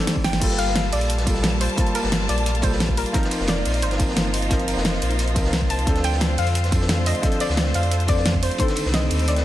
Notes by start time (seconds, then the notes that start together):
Already playing: D#3 G3 A3 C4 D4 D#4 A4 C5 D5
0.07 snare, closed hi-hat, open hi-hat
0.16 kick
0.24 G1 G5, snare, closed hi-hat, open hi-hat
0.33 snare, closed hi-hat
0.40 G1 G3 A#3 F4 A4 A5, kick, closed hi-hat, crash
0.50 snare, closed hi-hat
0.59 F5, closed hi-hat, ride
0.68 snare
0.76 snare, closed hi-hat
0.93 A#1 D5, closed hi-hat, open hi-hat, ride
1.01 closed hi-hat
1.10 closed hi-hat
1.18 snare, closed hi-hat
1.25 G3 A#3 F4 A4, kick, closed hi-hat, ride
1.34 snare
1.43 snare, closed hi-hat
1.61 C5, closed hi-hat, open hi-hat, ride
1.70 closed hi-hat
1.76 G3 A#3 F4 A5, kick, closed hi-hat
1.87 closed hi-hat
1.95 A#4, closed hi-hat, ride
2.03 G1, snare
2.12 snare, closed hi-hat
2.21 snare
2.29 A#1 D5, closed hi-hat, ride
2.38 closed hi-hat
2.46 closed hi-hat
2.55 closed hi-hat
2.61 G3 A#3 F4 A4 C5, kick, closed hi-hat, ride
2.72 snare
2.80 snare, closed hi-hat
2.89 kick
2.97 A#4, closed hi-hat, open hi-hat, ride
3.06 closed hi-hat
3.12 F3 C4 D#4 A#4 C5, kick, closed hi-hat
3.23 snare, closed hi-hat
3.31 closed hi-hat, ride
3.40 F1, snare
3.48 D5, snare, closed hi-hat
3.65 A#1, closed hi-hat, open hi-hat, ride
3.74 closed hi-hat
3.82 G1 C5, closed hi-hat
3.91 snare, closed hi-hat
3.98 F3 C4 D#4 A#4, kick, closed hi-hat, ride
4.09 snare
4.17 snare, closed hi-hat
4.34 closed hi-hat, open hi-hat, ride
4.42 closed hi-hat
4.49 F3 C4 D#4 A#4, kick, closed hi-hat
4.60 closed hi-hat
4.68 closed hi-hat, ride
4.76 F1, snare
4.85 snare, closed hi-hat
4.94 snare
5.02 A#1, closed hi-hat, ride
5.11 closed hi-hat
5.19 closed hi-hat
5.28 closed hi-hat
5.34 C2 F3 C4 D#4 A#4, kick, closed hi-hat, ride
5.45 snare
5.53 snare, closed hi-hat
5.61 kick
5.70 A5, closed hi-hat, open hi-hat, ride
5.79 closed hi-hat
5.85 D2 D3 F3 A3 C4 D4 A4, kick, closed hi-hat
5.96 snare, closed hi-hat
6.04 G5, closed hi-hat, ride
6.13 snare
6.21 snare, closed hi-hat
6.38 F2 F5, closed hi-hat, open hi-hat, ride
6.47 closed hi-hat
6.55 closed hi-hat
6.64 snare, closed hi-hat
6.71 F3 C4 D4 A4, kick, closed hi-hat, ride
6.81 snare
6.89 snare, closed hi-hat
7.06 D#5, closed hi-hat, open hi-hat, ride
7.15 closed hi-hat
7.21 F3 C4 D4 A4, kick, closed hi-hat
7.32 closed hi-hat
7.40 D5, closed hi-hat, ride
7.49 D2, snare
7.57 snare, closed hi-hat
7.66 snare
7.74 F2 F5, closed hi-hat, ride
7.83 closed hi-hat
7.92 closed hi-hat
8.00 closed hi-hat
8.07 F3 C4 D4 A4 D5, kick, closed hi-hat, ride
8.17 snare
8.25 snare, closed hi-hat
8.34 kick
8.43 C5, closed hi-hat, open hi-hat, ride
8.51 closed hi-hat
8.58 D3 D#3 G3 A3 C4 A4 C5, kick, closed hi-hat
8.68 snare, closed hi-hat
8.76 closed hi-hat, ride
8.85 C2, snare
8.94 D#5, snare, closed hi-hat
9.10 D#2, closed hi-hat, open hi-hat, ride
9.19 closed hi-hat
9.28 D2 D5, closed hi-hat
9.36 snare, closed hi-hat